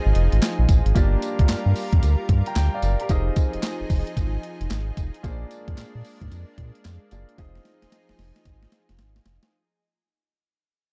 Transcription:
Already playing: analog synth pad F3 D#4 G#4, grand piano C4 D#4 F4 G#4 D#5
0.06 analog synth bass G#1
0.15 analog synth bass F1, closed hi-hat
0.32 analog synth bass G#1, closed hi-hat
0.42 snare, clap, closed hi-hat, tambourine
0.59 analog synth bass A#1
0.69 analog synth bass A1, kick, closed hi-hat, tambourine
0.85 analog synth bass G#1, closed hi-hat
0.95 analog synth bass G1, analog synth pad G3 F4 A#4, grand piano A#3 D4 F4 G4 D5, kick, closed hi-hat, tambourine
1.22 closed hi-hat, tambourine
1.39 analog synth bass D2, kick, closed hi-hat
1.49 analog synth bass G2, snare, clap, closed hi-hat, tambourine
1.66 analog synth bass G2
1.76 open hi-hat, tambourine
1.93 analog synth bass F2, kick, closed hi-hat
2.02 analog synth bass D2, closed hi-hat, tambourine
2.29 analog synth bass G2, kick, closed hi-hat
2.46 grand piano G5 A#5, closed hi-hat
2.55 analog synth bass D2, grand piano G5, snare, clap, closed hi-hat, tambourine
2.74 grand piano D5 F5
2.82 analog synth bass F#1, grand piano A#4 D5, closed hi-hat, tambourine
3.00 grand piano G4 A#4, closed hi-hat
3.09 analog synth bass F1, analog synth pad F3 D#4 G#4, grand piano C4 D#4 F4 G#4 D#5, kick, closed hi-hat, tambourine
3.36 kick, closed hi-hat, tambourine
3.53 analog synth bass F1, closed hi-hat
3.63 snare, clap, closed hi-hat, tambourine
3.80 analog synth bass F1
3.90 analog synth bass F1, kick, open hi-hat, tambourine
4.07 closed hi-hat
4.17 analog synth bass G#1, kick, closed hi-hat, tambourine
4.43 closed hi-hat
4.61 analog synth bass F1, closed hi-hat
4.70 analog synth bass G#1, snare, clap, closed hi-hat, tambourine
4.97 analog synth bass F1, kick, closed hi-hat, tambourine
5.14 closed hi-hat
5.23 analog synth bass A#1, analog synth pad G#3 A#3 D4, grand piano A#3 D4 F4 G#4 C5, kick, closed hi-hat, tambourine
5.32 grand piano D5
5.51 closed hi-hat, tambourine
5.68 analog synth bass F2, kick, closed hi-hat
5.78 analog synth bass A#2, snare, clap, closed hi-hat, tambourine
5.95 analog synth bass A#2
6.05 open hi-hat, tambourine
6.21 analog synth bass G#2, kick, closed hi-hat
6.31 analog synth bass F2, closed hi-hat, tambourine
6.58 analog synth bass A#2, kick, closed hi-hat
6.75 closed hi-hat
6.84 analog synth bass F2, snare, clap, closed hi-hat, tambourine
7.11 analog synth bass F#1, grand piano A#3 D4 F4 G#4 D5, closed hi-hat, tambourine
7.29 closed hi-hat
7.37 analog synth bass F1, analog synth pad F3 D#4 G#4, grand piano C4 D#4 F4 G#4 D#5, kick, snare, closed hi-hat
7.55 snare
7.65 snare, closed hi-hat
7.82 analog synth bass F1, snare, closed hi-hat
7.92 snare, closed hi-hat
8.09 analog synth bass F1, snare
8.19 analog synth bass F1, snare, open hi-hat
8.36 snare, closed hi-hat
8.45 analog synth bass G#1, kick, snare, closed hi-hat
8.63 snare
8.72 snare, closed hi-hat
8.89 analog synth bass F1, snare, closed hi-hat
8.99 analog synth bass G#1, snare, closed hi-hat
9.16 snare
9.26 analog synth bass F1, snare, closed hi-hat
9.43 snare, closed hi-hat

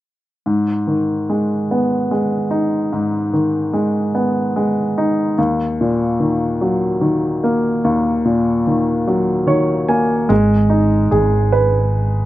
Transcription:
0.46 grand piano G#2
0.87 grand piano D#3
1.29 grand piano G#3
1.71 grand piano B3
2.11 grand piano G#3
2.51 grand piano D#4
2.93 grand piano G#2
3.33 grand piano D#3
3.73 grand piano G#3
4.15 grand piano B3
4.56 grand piano G#3
4.98 grand piano D#4
5.38 grand piano D#2
5.81 grand piano A#2
6.20 grand piano D#3
6.61 grand piano F#3
7.01 grand piano D#3
7.44 grand piano A#3
7.84 grand piano D#2
8.25 grand piano A#2
8.67 grand piano D#3
9.07 grand piano F#3
9.47 grand piano D#3 C#5
9.88 grand piano A#3 G#5
10.29 fretless electric bass G#1, grand piano G#3
10.70 grand piano D#4
11.11 fretless electric bass G#1, grand piano G#4
11.52 grand piano B4

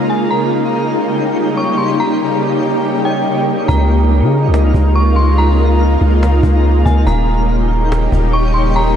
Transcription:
Already playing: synth texture C#3 D#4 A#4 F5, ambient pad C#3 G#3 A#3 D#4 F4
0.10 synth bell G#5
0.31 ambient pad G3 G4, synth texture C#5 G5, synth bell A#5
1.57 synth bell C#6
1.78 synth bell C6
2.00 synth bell A#5
3.05 synth bell G5
3.68 808-style bass C#2, ambient pad G#3 F4, synth texture A#4 F5, synth bell A#5, cajon bass
3.90 cajon slap
4.11 cajon slap
4.22 808-style bass C#3
4.32 cajon slap
4.48 808-style bass C#2
4.54 cajon slap
4.74 808-style bass C#2, cajon bass
4.96 synth bell C#6, cajon slap
5.16 synth bell C6
5.22 cajon slap
5.27 cajon slap
5.33 cajon slap
5.38 synth bell A#5, cajon slap
5.59 cajon slap
5.80 cajon slap
6.01 808-style bass C#2, cajon slap
6.23 cajon slap
6.43 808-style bass C#2, cajon bass
6.65 cajon slap
6.86 808-style bass C#2, synth bell G#5, cajon bass
7.02 cajon slap
7.07 808-style bass D#1, ambient pad C#3 G3 A#3 D#4 G4, synth texture D#4 C#5 G5, synth bell A#5, cajon bass
7.28 cajon slap
7.49 cajon slap
7.70 cajon slap
7.92 cajon slap
8.12 808-style bass D#1, cajon bass
8.33 synth bell C#6, cajon slap
8.54 synth bell C6
8.71 cajon slap
8.76 synth bell A#5, cajon slap

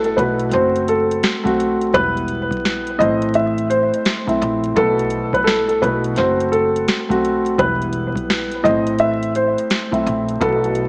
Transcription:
Already playing: grand piano B2 A3 E4 F#4 B4
0.04 upright piano A4, closed hi-hat
0.17 upright bass B1, grand piano B2 A3 E4 F#4 B4, upright piano B4, kick, closed hi-hat
0.40 closed hi-hat
0.51 upright bass F#1, grand piano A3 C4 F#4, upright piano C5, closed hi-hat
0.76 closed hi-hat
0.88 upright piano A4, closed hi-hat
1.11 closed hi-hat
1.23 snare, closed hi-hat
1.44 grand piano A3 C4 F#4, kick, closed hi-hat
1.60 closed hi-hat
1.81 closed hi-hat
1.93 upright bass E1, grand piano G3 B3 E4, upright piano B4, kick, closed hi-hat
2.17 closed hi-hat
2.28 closed hi-hat
2.51 kick, closed hi-hat
2.65 snare, closed hi-hat
2.87 closed hi-hat
2.98 upright bass A1, grand piano A2 A3 C4 E4 C5, upright piano D#5, kick, closed hi-hat
3.22 closed hi-hat
3.34 upright piano E5, closed hi-hat
3.58 closed hi-hat
3.70 upright piano C5, closed hi-hat
3.94 closed hi-hat
4.05 snare, closed hi-hat
4.26 grand piano A2 A3 C4 E4 E5, kick, closed hi-hat
4.42 upright bass A#1, closed hi-hat
4.64 closed hi-hat
4.75 upright bass B1, grand piano B2 A3 E4 F#4 B4, upright piano A4, kick, closed hi-hat
4.99 closed hi-hat
5.10 closed hi-hat
5.33 upright piano B4, kick, closed hi-hat
5.44 upright piano A4, snare
5.49 closed hi-hat
5.68 upright piano A4, closed hi-hat
5.82 upright bass B1, grand piano B2 A3 E4 F#4 B4, upright piano B4, kick, closed hi-hat
6.04 closed hi-hat
6.16 upright bass F#1, grand piano A3 C4 F#4, upright piano C5, snare, closed hi-hat
6.40 closed hi-hat
6.52 upright piano A4, closed hi-hat
6.76 closed hi-hat
6.88 snare, closed hi-hat
7.09 grand piano A3 C4 F#4, kick, closed hi-hat
7.25 closed hi-hat
7.46 closed hi-hat
7.58 upright bass E1, grand piano G3 B3 E4, upright piano B4, kick, closed hi-hat
7.82 closed hi-hat
7.93 closed hi-hat
8.16 kick, closed hi-hat
8.30 snare, closed hi-hat
8.52 closed hi-hat
8.63 upright bass A1, grand piano A2 A3 C4 E4 C5, upright piano D#5, kick, closed hi-hat
8.87 closed hi-hat
8.99 upright piano E5, closed hi-hat
9.23 closed hi-hat
9.35 upright piano C5, closed hi-hat
9.58 closed hi-hat
9.70 snare, closed hi-hat
9.91 grand piano A2 A3 C4 E4 E5, kick, closed hi-hat
10.06 upright bass A#1, closed hi-hat
10.29 closed hi-hat
10.40 upright bass B1, grand piano B2 A3 E4 F#4 B4, upright piano A4, kick, closed hi-hat
10.64 closed hi-hat
10.75 closed hi-hat

